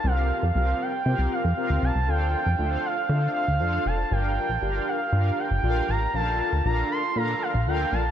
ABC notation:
X:1
M:4/4
L:1/16
Q:1/4=118
K:Dm
V:1 name="Soft synth lead"
f4 f2 g4 f4 a2 | g6 f4 f4 a2 | g6 f4 g4 b2 | a2 a2 b2 c'2 b2 f2 g2 a2 |]
V:2 name="Analog polysynth"
[CFGBf]3 z [CFGBf]3 z [CFGBf]3 z [CFGBf]3 z | [DFAcf]3 z [DFAcef]3 z [DFAcef]3 z [DFAcf]3 z | [DFGBf]3 z [DFGBf]3 z [DFGBf]3 z [DFGABf]3 z | [^CDFABf]3 z [DFABf]3 z [DFABf]3 z [DFABf]3 z |]
V:3 name="Analog synth bass" clef=bass
C,,3 F,, C,,2 z2 C, C,, z F,, z D,, C,, C,, | D,,3 F,, D,,2 z2 D,2 z D,, F,,2 F,,,2 | G,,,3 B,,, G,,,2 z2 G,,2 z G,,, B,,,2 A,,,2 | B,,,3 D,, B,,,2 z2 B,,2 z B,,, D,,2 B,,,2 |]